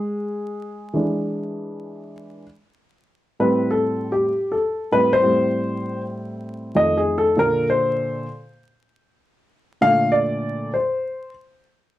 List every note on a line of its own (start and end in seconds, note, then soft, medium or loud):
0.00 0.93 G#3 medium
0.00 2.12 G#4 medium
0.93 2.43 E3 medium
0.93 2.43 G#3 soft
0.93 2.44 D4 medium
3.40 4.27 A2 medium
3.40 4.27 G3 soft
3.40 4.28 C4 medium
3.40 3.71 B4 medium
3.71 4.12 A4 medium
4.12 4.53 G4 medium
4.52 4.90 A4 medium
4.92 5.20 A2 medium
4.92 5.20 G3 soft
4.92 5.20 C4 medium
4.92 5.13 B4 loud
5.13 6.01 C5 loud
5.22 6.72 A2 medium
5.22 6.72 G3 medium
5.22 6.72 C4 medium
6.75 7.34 F2 medium
6.75 7.34 D#3 soft
6.75 7.34 A3 medium
6.75 6.97 D#5 loud
6.97 7.18 G#4 medium
7.18 7.36 A4 medium
7.36 8.25 A#2 medium
7.36 8.25 D3 medium
7.36 8.25 A4 medium
7.36 7.67 A#4 loud
7.70 8.26 C5 medium
9.81 10.69 A#2 medium
9.81 10.70 D3 medium
9.81 10.70 A3 medium
9.81 10.14 F5 loud
10.12 10.75 D5 loud
10.74 11.31 C5 medium